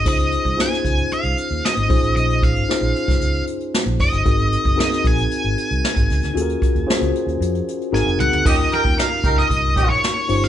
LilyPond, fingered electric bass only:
\new Staff \with { instrumentName = "Fingered electric bass" } { \clef bass \time 4/4 \key ees \dorian \tempo 4 = 114 des,8. c,16 r8 des,8 r16 c,16 r16 ees,16 r16 aes,,16 bes,,16 a,,16 | bes,,8. aes,,16 r16 bes,,16 r16 c,16 des,8 r8. bes,,16 ges,,16 g,,16 | aes,,8. ges,,16 r8 bes,,8 r16 aes,,16 r16 c,16 r16 aes,,16 des,16 d,16 | ees,8 r16 ees,16 r16 des,16 r16 ees,16 f,8 r8 aes,,16 f,,16 des,16 d,16 |
ees,8 r16 ees,16 r8 des,8 c,8 bes,,8 r8 g,,8 | }